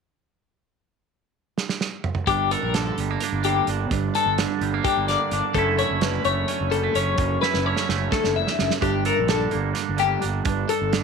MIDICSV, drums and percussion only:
0, 0, Header, 1, 2, 480
1, 0, Start_track
1, 0, Tempo, 467654
1, 663, Time_signature, 7, 3, 24, 8
1, 11325, End_track
2, 0, Start_track
2, 0, Title_t, "Drums"
2, 1618, Note_on_c, 9, 38, 62
2, 1720, Note_off_c, 9, 38, 0
2, 1739, Note_on_c, 9, 38, 67
2, 1841, Note_off_c, 9, 38, 0
2, 1856, Note_on_c, 9, 38, 67
2, 1959, Note_off_c, 9, 38, 0
2, 2094, Note_on_c, 9, 45, 84
2, 2196, Note_off_c, 9, 45, 0
2, 2204, Note_on_c, 9, 45, 82
2, 2307, Note_off_c, 9, 45, 0
2, 2332, Note_on_c, 9, 36, 85
2, 2333, Note_on_c, 9, 42, 66
2, 2435, Note_off_c, 9, 36, 0
2, 2436, Note_off_c, 9, 42, 0
2, 2579, Note_on_c, 9, 42, 52
2, 2682, Note_off_c, 9, 42, 0
2, 2813, Note_on_c, 9, 42, 72
2, 2818, Note_on_c, 9, 38, 91
2, 2916, Note_off_c, 9, 42, 0
2, 2921, Note_off_c, 9, 38, 0
2, 3055, Note_on_c, 9, 42, 52
2, 3158, Note_off_c, 9, 42, 0
2, 3289, Note_on_c, 9, 42, 74
2, 3392, Note_off_c, 9, 42, 0
2, 3528, Note_on_c, 9, 42, 54
2, 3630, Note_off_c, 9, 42, 0
2, 3769, Note_on_c, 9, 42, 56
2, 3872, Note_off_c, 9, 42, 0
2, 4014, Note_on_c, 9, 36, 86
2, 4014, Note_on_c, 9, 42, 72
2, 4116, Note_off_c, 9, 36, 0
2, 4117, Note_off_c, 9, 42, 0
2, 4257, Note_on_c, 9, 42, 56
2, 4359, Note_off_c, 9, 42, 0
2, 4496, Note_on_c, 9, 42, 71
2, 4501, Note_on_c, 9, 38, 97
2, 4599, Note_off_c, 9, 42, 0
2, 4604, Note_off_c, 9, 38, 0
2, 4736, Note_on_c, 9, 42, 47
2, 4839, Note_off_c, 9, 42, 0
2, 4974, Note_on_c, 9, 36, 92
2, 4975, Note_on_c, 9, 42, 72
2, 5076, Note_off_c, 9, 36, 0
2, 5078, Note_off_c, 9, 42, 0
2, 5218, Note_on_c, 9, 42, 50
2, 5223, Note_on_c, 9, 38, 30
2, 5321, Note_off_c, 9, 42, 0
2, 5326, Note_off_c, 9, 38, 0
2, 5454, Note_on_c, 9, 42, 49
2, 5557, Note_off_c, 9, 42, 0
2, 5691, Note_on_c, 9, 36, 82
2, 5691, Note_on_c, 9, 42, 66
2, 5794, Note_off_c, 9, 36, 0
2, 5794, Note_off_c, 9, 42, 0
2, 5938, Note_on_c, 9, 42, 50
2, 6040, Note_off_c, 9, 42, 0
2, 6173, Note_on_c, 9, 42, 68
2, 6178, Note_on_c, 9, 38, 91
2, 6275, Note_off_c, 9, 42, 0
2, 6281, Note_off_c, 9, 38, 0
2, 6411, Note_on_c, 9, 42, 52
2, 6513, Note_off_c, 9, 42, 0
2, 6651, Note_on_c, 9, 42, 73
2, 6754, Note_off_c, 9, 42, 0
2, 6896, Note_on_c, 9, 42, 52
2, 6998, Note_off_c, 9, 42, 0
2, 7136, Note_on_c, 9, 42, 55
2, 7238, Note_off_c, 9, 42, 0
2, 7366, Note_on_c, 9, 42, 68
2, 7372, Note_on_c, 9, 36, 89
2, 7468, Note_off_c, 9, 42, 0
2, 7474, Note_off_c, 9, 36, 0
2, 7622, Note_on_c, 9, 38, 47
2, 7724, Note_off_c, 9, 38, 0
2, 7736, Note_on_c, 9, 38, 41
2, 7838, Note_off_c, 9, 38, 0
2, 7970, Note_on_c, 9, 38, 48
2, 8072, Note_off_c, 9, 38, 0
2, 8099, Note_on_c, 9, 38, 57
2, 8202, Note_off_c, 9, 38, 0
2, 8335, Note_on_c, 9, 36, 89
2, 8338, Note_on_c, 9, 38, 65
2, 8438, Note_off_c, 9, 36, 0
2, 8441, Note_off_c, 9, 38, 0
2, 8458, Note_on_c, 9, 38, 59
2, 8560, Note_off_c, 9, 38, 0
2, 8696, Note_on_c, 9, 38, 54
2, 8799, Note_off_c, 9, 38, 0
2, 8815, Note_on_c, 9, 38, 70
2, 8917, Note_off_c, 9, 38, 0
2, 8935, Note_on_c, 9, 38, 68
2, 9038, Note_off_c, 9, 38, 0
2, 9052, Note_on_c, 9, 42, 65
2, 9054, Note_on_c, 9, 36, 85
2, 9154, Note_off_c, 9, 42, 0
2, 9157, Note_off_c, 9, 36, 0
2, 9290, Note_on_c, 9, 42, 54
2, 9392, Note_off_c, 9, 42, 0
2, 9528, Note_on_c, 9, 42, 66
2, 9533, Note_on_c, 9, 38, 96
2, 9631, Note_off_c, 9, 42, 0
2, 9636, Note_off_c, 9, 38, 0
2, 9763, Note_on_c, 9, 42, 45
2, 9866, Note_off_c, 9, 42, 0
2, 10006, Note_on_c, 9, 42, 72
2, 10012, Note_on_c, 9, 38, 28
2, 10109, Note_off_c, 9, 42, 0
2, 10114, Note_off_c, 9, 38, 0
2, 10243, Note_on_c, 9, 42, 51
2, 10346, Note_off_c, 9, 42, 0
2, 10489, Note_on_c, 9, 42, 55
2, 10591, Note_off_c, 9, 42, 0
2, 10724, Note_on_c, 9, 42, 62
2, 10731, Note_on_c, 9, 36, 91
2, 10827, Note_off_c, 9, 42, 0
2, 10834, Note_off_c, 9, 36, 0
2, 10972, Note_on_c, 9, 42, 53
2, 11075, Note_off_c, 9, 42, 0
2, 11215, Note_on_c, 9, 42, 70
2, 11221, Note_on_c, 9, 38, 95
2, 11318, Note_off_c, 9, 42, 0
2, 11323, Note_off_c, 9, 38, 0
2, 11325, End_track
0, 0, End_of_file